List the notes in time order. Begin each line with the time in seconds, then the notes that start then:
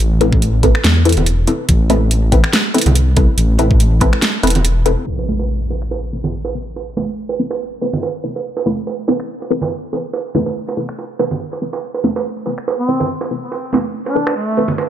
0.00 A1
0.21 C4 E4 A4 B4, closed hi-hat, high conga
0.33 kick
0.42 closed hi-hat
0.63 C4 E4 A4 B4, kick, closed hi-hat
0.75 finger snap
0.84 E2, snare, closed hi-hat
1.05 C4 E4 A4 B4, closed hi-hat
1.09 closed hi-hat
1.12 closed hi-hat
1.17 E1, closed hi-hat, low conga
1.26 closed hi-hat
1.47 C4 E4 A4 B4, closed hi-hat
1.69 A1, kick, closed hi-hat
1.90 C4 E4 A4 B4, closed hi-hat, high conga
2.11 closed hi-hat
2.32 C4 E4 A4 B4, kick, closed hi-hat
2.44 finger snap
2.53 snare, closed hi-hat
2.74 C4 E4 A4 B4, closed hi-hat
2.78 closed hi-hat
2.81 closed hi-hat
2.86 C2, closed hi-hat, low conga
2.95 closed hi-hat
3.17 C4 E4 A4 B4, kick, closed hi-hat
3.38 A1, closed hi-hat
3.59 C4 E4 A4 B4, closed hi-hat, high conga
3.71 kick
3.80 closed hi-hat
4.00 C4 E4 A4 B4, kick, closed hi-hat, high conga
4.13 finger snap
4.22 snare, closed hi-hat
4.43 E1 C4 E4 A4 B4, closed hi-hat
4.47 closed hi-hat
4.50 closed hi-hat
4.56 low conga
4.65 closed hi-hat
4.86 C4 E4 A4 B4, closed hi-hat
5.07 impact
5.19 high bongo
5.28 C4 E4 A4 B4, high conga
5.39 high bongo
5.70 C4 E4 A4 B4, high bongo
5.82 finger snap
5.91 high bongo
6.13 C4 E4 A4 B4
6.24 high bongo, low conga
6.45 high bongo
6.55 C4 E4 A4 B4
6.76 high bongo
6.97 C4 E4 A4 B4, high bongo, high conga
7.29 high bongo
7.39 C4 E4 A4 B4
7.51 finger snap, high bongo
7.81 C4 E4 A4 B4, high bongo
7.93 low conga
8.03 high bongo
8.24 C4 E4 A4 B4
8.36 high bongo
8.57 high bongo
8.66 C4 E4 A4 B4, high conga
8.87 high bongo
9.08 C4 E4 A4 B4, high bongo
9.20 finger snap
9.42 high bongo
9.50 C4 E4 A4 B4
9.62 high bongo, low conga
9.93 C4 E4 A4 B4, high bongo
10.13 high bongo
10.35 C4 E4 A4 B4, high conga, low conga
10.46 high bongo
10.68 high bongo
10.77 C4 E4 A4 B4
10.89 finger snap
10.99 high bongo
11.19 C4 E4 A4 B4, high bongo
11.31 low conga
11.53 high bongo
11.62 C4 E4 A4 B4
11.73 high bongo
11.94 high bongo
12.04 C4 E4 A4 B4, high conga
12.16 high bongo
12.46 C4 E4 A4 B4, high bongo
12.58 finger snap
12.68 high bongo
12.79 C4
12.89 C4 E4 A4 B4
13.00 high bongo, low conga
13.21 high bongo
13.31 C4 E4 A4 B4
13.52 high bongo
13.73 C4 E4 A4 B4, high bongo, high conga
14.06 D4, high bongo
14.15 C4 E4 A4 B4
14.27 finger snap, high bongo
14.36 A3
14.57 C4 E4 A4 B4, high bongo
14.68 low conga
14.78 high bongo